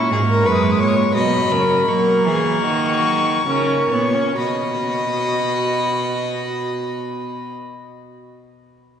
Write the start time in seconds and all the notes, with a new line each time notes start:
Already playing: A#2 C#4 E4 C#6
0.11 G#2 A#3 G#4
0.29 A#4
0.45 F#2 G#3 B4 C#6
0.54 D#6
0.62 C#6
0.71 D#6
0.79 A#2 C#5 C#6
0.88 D#6
0.96 C#6
1.14 B2 F#3 D#5 B5
1.50 C#3 A#4
1.87 F#3 A#3 A#4 C#6
2.25 E3 G#4
2.64 D#3 F#4
3.48 C#3 C#4 A#4
3.91 A#2 B3 C#5
4.14 C#4
4.38 B2 F#4 D#5 B5